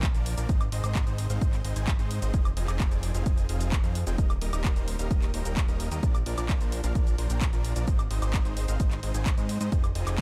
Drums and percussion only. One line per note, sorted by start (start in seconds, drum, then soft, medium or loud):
0.03 kick loud
0.03 clap loud
0.03 closed hi-hat medium
0.03 shaker medium
0.15 closed hi-hat soft
0.15 shaker soft
0.26 open hi-hat loud
0.38 closed hi-hat medium
0.38 shaker medium
0.49 kick loud
0.49 closed hi-hat soft
0.49 shaker medium
0.61 closed hi-hat soft
0.61 high woodblock medium
0.61 shaker soft
0.72 open hi-hat loud
0.84 closed hi-hat medium
0.84 high woodblock medium
0.84 shaker medium
0.95 kick loud
0.95 clap loud
0.95 closed hi-hat soft
0.95 shaker soft
1.07 closed hi-hat soft
1.07 shaker soft
1.18 open hi-hat loud
1.30 closed hi-hat medium
1.30 shaker medium
1.41 kick loud
1.41 closed hi-hat medium
1.41 shaker medium
1.53 clap soft
1.53 closed hi-hat soft
1.53 shaker soft
1.65 open hi-hat loud
1.76 closed hi-hat medium
1.76 shaker medium
1.88 kick loud
1.88 clap loud
1.88 closed hi-hat medium
1.88 shaker medium
1.99 closed hi-hat soft
1.99 shaker soft
2.11 open hi-hat loud
2.22 closed hi-hat medium
2.22 shaker medium
2.34 kick loud
2.34 closed hi-hat soft
2.34 shaker medium
2.45 closed hi-hat soft
2.45 high woodblock medium
2.45 shaker soft
2.57 open hi-hat loud
2.68 clap soft
2.68 closed hi-hat soft
2.68 high woodblock medium
2.68 shaker medium
2.80 kick loud
2.80 clap loud
2.80 closed hi-hat soft
2.80 shaker medium
2.91 closed hi-hat soft
2.91 shaker soft
3.03 open hi-hat loud
3.15 closed hi-hat medium
3.15 shaker medium
3.26 kick loud
3.26 closed hi-hat soft
3.26 shaker medium
3.38 closed hi-hat soft
3.38 shaker soft
3.49 open hi-hat loud
3.61 closed hi-hat medium
3.61 shaker medium
3.72 kick loud
3.72 clap loud
3.72 closed hi-hat medium
3.72 shaker medium
3.84 closed hi-hat soft
3.84 shaker soft
3.95 open hi-hat loud
4.07 closed hi-hat medium
4.07 shaker medium
4.18 kick loud
4.18 closed hi-hat soft
4.18 shaker medium
4.30 closed hi-hat soft
4.30 high woodblock medium
4.30 shaker soft
4.42 open hi-hat loud
4.53 closed hi-hat medium
4.53 high woodblock medium
4.53 shaker medium
4.65 kick loud
4.65 clap loud
4.65 closed hi-hat soft
4.65 shaker medium
4.76 closed hi-hat soft
4.76 shaker soft
4.88 open hi-hat loud
4.99 closed hi-hat medium
4.99 shaker medium
5.11 kick loud
5.11 closed hi-hat medium
5.11 shaker medium
5.22 clap soft
5.22 closed hi-hat soft
5.22 shaker soft
5.34 open hi-hat loud
5.45 closed hi-hat medium
5.45 shaker medium
5.57 kick loud
5.57 clap loud
5.57 closed hi-hat medium
5.57 shaker medium
5.68 closed hi-hat soft
5.68 shaker soft
5.80 open hi-hat loud
5.92 closed hi-hat medium
5.92 shaker medium
6.03 kick loud
6.03 closed hi-hat soft
6.03 shaker medium
6.15 closed hi-hat soft
6.15 high woodblock medium
6.15 shaker soft
6.26 open hi-hat loud
6.38 clap soft
6.38 closed hi-hat soft
6.38 high woodblock medium
6.38 shaker medium
6.49 kick loud
6.49 clap loud
6.49 closed hi-hat soft
6.49 shaker medium
6.61 closed hi-hat soft
6.61 shaker soft
6.72 open hi-hat loud
6.84 closed hi-hat medium
6.84 shaker medium
6.95 kick loud
6.95 closed hi-hat soft
6.95 shaker medium
7.07 closed hi-hat soft
7.07 shaker soft
7.18 open hi-hat loud
7.30 closed hi-hat medium
7.30 shaker medium
7.41 kick loud
7.41 clap loud
7.41 closed hi-hat medium
7.41 shaker medium
7.53 closed hi-hat soft
7.53 shaker soft
7.65 open hi-hat loud
7.76 closed hi-hat medium
7.76 shaker medium
7.88 kick loud
7.88 closed hi-hat medium
7.88 shaker medium
7.99 closed hi-hat soft
7.99 high woodblock medium
7.99 shaker soft
8.11 open hi-hat loud
8.22 closed hi-hat medium
8.22 high woodblock medium
8.22 shaker medium
8.34 kick loud
8.34 clap loud
8.34 closed hi-hat soft
8.34 shaker medium
8.45 closed hi-hat soft
8.45 shaker soft
8.57 open hi-hat loud
8.68 closed hi-hat medium
8.68 shaker medium
8.80 kick loud
8.80 closed hi-hat medium
8.80 shaker medium
8.91 clap soft
8.91 closed hi-hat soft
8.91 shaker soft
9.03 open hi-hat loud
9.15 closed hi-hat medium
9.15 shaker medium
9.26 kick loud
9.26 clap loud
9.26 closed hi-hat medium
9.26 shaker medium
9.38 closed hi-hat soft
9.38 shaker soft
9.49 open hi-hat loud
9.61 closed hi-hat medium
9.61 shaker medium
9.72 kick loud
9.72 closed hi-hat medium
9.72 shaker medium
9.84 closed hi-hat soft
9.84 high woodblock medium
9.84 shaker soft
9.95 open hi-hat loud
10.07 clap soft
10.07 closed hi-hat medium
10.07 high woodblock medium
10.07 shaker medium